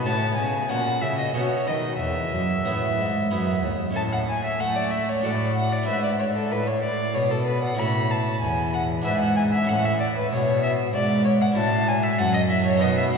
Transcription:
0.04 0.37 A2 soft
0.04 0.35 A2 soft
0.04 0.66 C#4 soft
0.04 0.66 F#4 soft
0.04 0.66 C#5 soft
0.04 0.36 A5 medium
0.36 0.66 C#3 soft
0.36 0.69 C#3 soft
0.36 0.70 G#5 medium
0.69 0.99 A#2 soft
0.69 1.03 A#2 soft
0.69 1.31 C#4 soft
0.69 1.31 F#4 soft
0.69 1.31 C#5 soft
0.69 1.03 F#5 medium
1.02 1.34 C#3 soft
1.02 1.32 C#3 soft
1.02 1.18 E5 medium
1.18 1.34 D#5 soft
1.34 1.63 B2 soft
1.34 1.42 B2 medium
1.34 1.96 B3 soft
1.34 1.96 F#4 soft
1.34 1.96 A4 soft
1.34 1.69 C#5 medium
1.67 1.99 D#3 soft
1.67 1.97 D#3 soft
1.67 2.00 D#5 medium
2.00 2.30 E2 soft
2.00 2.33 E2 soft
2.00 3.61 E5 medium
2.33 2.63 F#2 soft
2.33 2.68 F#2 soft
2.65 2.95 A2 soft
2.65 3.01 A2 soft
2.65 3.12 B3 soft
2.65 3.13 E4 soft
2.65 3.13 G#4 soft
2.99 3.28 G#2 soft
2.99 3.33 G#2 soft
3.31 3.63 F#2 soft
3.31 3.61 F#2 soft
3.31 3.55 B3 soft
3.31 3.79 E4 soft
3.31 3.79 G#4 soft
3.63 3.93 D#2 soft
3.63 3.72 D#2 soft
3.91 5.18 C#4 soft
3.91 5.19 E4 soft
3.91 5.20 A4 soft
3.96 4.56 A2 soft
3.96 4.57 A2 soft
3.96 4.02 A5 medium
4.12 4.19 F#5 medium
4.29 4.45 G#5 medium
4.45 4.62 E5 medium
4.60 5.21 A3 soft
4.60 5.23 A3 soft
4.60 4.78 F#5 medium
4.76 4.93 D5 medium
4.92 5.10 E5 medium
5.09 5.26 C#5 medium
5.21 5.87 A2 medium
5.21 5.82 D4 soft
5.21 5.85 F#4 soft
5.21 5.86 A4 soft
5.21 5.55 D5 medium
5.25 5.85 A2 soft
5.56 5.74 F#5 medium
5.73 5.87 D5 medium
5.83 7.73 D4 soft
5.83 7.73 E4 soft
5.83 7.74 B4 soft
5.88 6.48 G#2 soft
5.88 6.53 G#2 soft
5.88 6.04 E5 medium
6.04 6.10 D5 medium
6.19 6.26 C#5 medium
6.36 6.53 A4 medium
6.52 7.17 A2 soft
6.52 7.12 A2 soft
6.52 6.69 B4 medium
6.68 6.83 C#5 medium
6.83 7.16 D5 medium
7.15 7.78 B2 medium
7.15 7.75 B2 soft
7.15 7.33 C#5 medium
7.31 7.47 A4 medium
7.47 7.63 B4 medium
7.63 7.80 F#5 medium
7.75 9.00 C#4 soft
7.75 9.01 E4 soft
7.75 9.02 A4 soft
7.79 8.41 A2 soft
7.79 8.39 A2 soft
7.79 8.13 B5 medium
8.11 8.41 A5 medium
8.41 9.05 E2 medium
8.41 9.03 E2 soft
8.41 8.73 G#5 medium
8.74 8.82 F#5 medium
9.02 9.65 D4 soft
9.02 9.64 E4 soft
9.02 9.67 B4 soft
9.02 9.20 E5 medium
9.06 9.65 G#2 soft
9.06 9.68 G#2 medium
9.21 9.36 F#5 medium
9.37 9.43 G#5 medium
9.53 9.71 E5 medium
9.64 11.51 C#4 soft
9.64 11.51 E4 soft
9.64 11.52 A4 soft
9.69 10.28 A2 soft
9.69 10.33 A2 medium
9.69 9.87 F#5 medium
9.85 9.99 E5 medium
10.00 10.06 D5 medium
10.17 10.31 B4 medium
10.32 10.93 B2 soft
10.32 10.90 B2 soft
10.32 10.62 C#5 medium
10.63 10.71 E5 medium
10.93 11.53 G#2 soft
10.93 11.56 G#2 medium
10.93 11.25 D5 medium
11.25 11.32 C#5 medium
11.41 11.48 F#5 medium
11.52 12.77 C#4 soft
11.52 12.77 E4 soft
11.52 12.78 F#4 soft
11.57 12.23 A2 medium
11.57 12.16 A2 soft
11.57 11.89 A5 medium
11.88 12.05 G#5 medium
12.03 12.20 E5 medium
12.19 12.79 F#2 medium
12.19 12.85 F#2 medium
12.19 12.33 F#5 medium
12.34 12.41 D#5 medium
12.50 12.65 E5 medium
12.66 12.83 C#5 medium
12.77 13.18 B3 soft
12.77 13.18 D#4 soft
12.77 13.18 F#4 soft
12.81 13.18 B2 soft
12.81 13.18 B2 medium
12.81 12.97 D#5 medium
12.98 13.04 E5 medium
13.13 13.18 F#5 medium

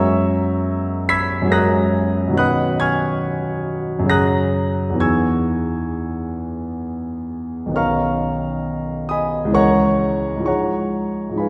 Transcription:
0.00 1.41 F#2 medium
0.00 1.43 F#3 soft
0.00 1.45 G#3 soft
0.00 1.48 C#4 soft
0.00 1.49 A#4 soft
0.00 1.07 E5 medium
0.00 1.06 A#5 medium
0.00 1.06 C#6 medium
0.00 1.08 E6 medium
1.09 1.51 B5 medium
1.09 1.51 E6 medium
1.09 1.51 G#6 medium
1.09 1.53 B6 loud
1.42 2.30 F#2 medium
1.42 2.31 F#3 medium
1.47 2.33 G#3 soft
1.47 2.33 C#4 soft
1.51 2.35 A#4 soft
1.51 2.34 A#5 medium
1.51 2.34 D#6 medium
1.51 2.35 F#6 medium
1.51 2.38 A#6 medium
2.27 4.02 B2 medium
2.27 4.04 D#3 soft
2.33 4.03 F#3 soft
2.33 4.05 C#4 soft
2.33 4.07 B4 soft
2.37 2.78 F#5 medium
2.37 2.78 B5 medium
2.37 2.78 D#6 medium
2.37 2.80 F#6 medium
2.80 4.08 G#5 medium
2.80 4.08 C#6 medium
2.80 4.08 F6 medium
2.80 4.11 G#6 medium
3.99 4.93 F#2 medium
3.99 4.94 C#3 soft
4.04 4.95 F#3 soft
4.04 4.97 C#4 soft
4.09 4.98 G#4 soft
4.09 4.97 A#5 medium
4.09 4.97 D#6 medium
4.09 4.98 F#6 medium
4.09 5.01 A#6 medium
4.90 7.67 E2 soft
4.90 7.69 E3 soft
4.95 7.69 B3 soft
4.95 7.71 D#4 soft
5.00 7.72 G#4 soft
5.00 6.81 G#5 medium
5.00 6.80 C#6 medium
5.00 6.81 E6 medium
5.00 6.84 G#6 medium
7.66 9.45 B1 soft
7.66 9.46 D#3 soft
7.71 9.47 B3 soft
7.71 9.49 C#4 soft
7.76 9.50 A#4 soft
7.76 9.05 F5 medium
7.76 9.05 A#5 medium
7.76 9.05 C#6 medium
7.76 9.09 F6 medium
9.09 9.52 D#5 medium
9.09 9.52 G#5 medium
9.09 9.52 B5 medium
9.09 9.54 D#6 medium
9.45 10.39 C#2 medium
9.45 10.40 E3 soft
9.50 10.40 G#3 soft
9.50 10.43 C#4 soft
9.54 10.43 A#4 soft
9.54 10.43 C#5 medium
9.54 10.43 F#5 medium
9.54 10.43 A#5 medium
9.54 10.44 C#6 medium
10.36 11.28 G#2 soft
10.36 11.30 F3 soft
10.41 11.32 G#3 soft
10.41 11.34 D#4 soft
10.46 11.35 G#4 soft
10.46 11.35 C#5 soft
10.46 11.35 F#5 soft
10.46 11.35 A#5 soft
10.46 11.38 C#6 medium
11.30 11.49 G#2 soft
11.30 11.49 F3 soft
11.34 11.49 G#3 soft
11.34 11.49 D#4 soft
11.34 11.49 B5 soft
11.38 11.49 G#4 soft
11.38 11.49 B4 soft
11.38 11.49 F5 soft
11.38 11.49 G#5 soft

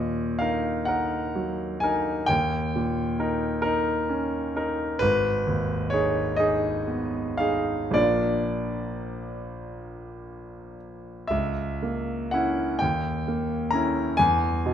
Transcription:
0.00 2.23 D#2 medium
0.00 0.69 A#2 soft
0.00 0.39 D#5 medium
0.39 0.84 D#4 soft
0.39 0.84 A#4 soft
0.39 0.87 F5 medium
0.85 1.31 D#4 soft
0.85 1.31 A#4 soft
0.85 1.81 F#5 medium
1.35 2.10 F#3 soft
1.80 2.25 D#4 soft
1.80 2.25 A#4 soft
1.80 2.28 G#5 medium
2.26 4.98 D#2 soft
2.26 3.62 G5 medium
2.76 3.46 A#2 soft
3.19 3.60 D#4 soft
3.19 3.60 A#4 soft
3.62 4.06 D#4 soft
3.62 4.55 A#4 medium
4.09 4.84 C#4 soft
4.56 4.98 D#4 soft
4.56 4.98 A#4 soft
4.99 7.91 G#1 medium
4.99 5.91 B4 medium
5.47 6.21 D#2 soft
5.90 6.35 D#4 soft
5.90 6.36 G#4 soft
5.90 6.38 C#5 medium
6.36 6.84 D#4 soft
6.36 6.84 G#4 soft
6.36 7.38 D#5 medium
6.87 7.73 B3 soft
7.38 7.91 D#4 soft
7.38 7.91 G#4 soft
7.38 7.94 F5 medium
7.91 11.24 A#1 soft
7.91 11.25 A#3 soft
7.91 11.25 D4 soft
7.91 10.75 D5 medium
7.95 11.26 F4 soft
11.27 12.78 C#2 medium
11.27 12.32 E5 medium
11.82 12.63 A#3 soft
12.31 12.78 C#4 soft
12.31 12.78 E4 soft
12.31 12.81 F#5 medium
12.79 14.15 D#2 soft
12.79 13.72 G5 medium
13.28 14.01 A#3 soft
13.71 14.15 C#4 soft
13.71 14.15 E4 soft
13.71 14.18 A#5 medium
14.17 14.74 E2 medium
14.17 14.74 G#5 medium
14.66 14.74 B2 soft

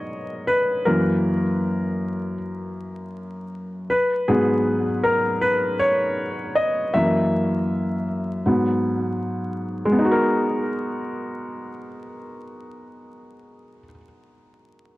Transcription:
0.00 0.83 G#2 medium
0.00 0.83 F#3 soft
0.00 0.83 B3 medium
0.00 0.85 A#4 medium
0.00 0.88 C#5 medium
0.00 0.51 D#5 medium
0.47 0.83 B4 medium
0.85 1.42 F#2 medium
0.85 1.42 E3 medium
0.85 1.42 A#3 medium
0.85 2.34 A#4 medium
3.90 4.26 B4 medium
4.28 4.84 G#2 medium
4.28 4.84 F#3 soft
4.28 4.84 B3 medium
4.28 5.00 G#4 medium
5.03 5.43 A#4 medium
5.41 5.81 B4 medium
5.79 6.58 C#5 loud
6.55 6.95 D#5 loud
6.94 8.42 F#2 medium
6.94 8.43 E3 soft
6.94 8.43 A#3 medium
6.94 8.04 E5 medium
8.46 9.94 G#2 medium
8.46 9.94 F#3 soft
8.46 9.90 B3 medium
9.85 13.78 G#3 medium
9.92 13.85 B3 medium
9.98 13.91 D#4 medium
10.05 13.98 F#4 medium
10.11 14.04 A#4 medium

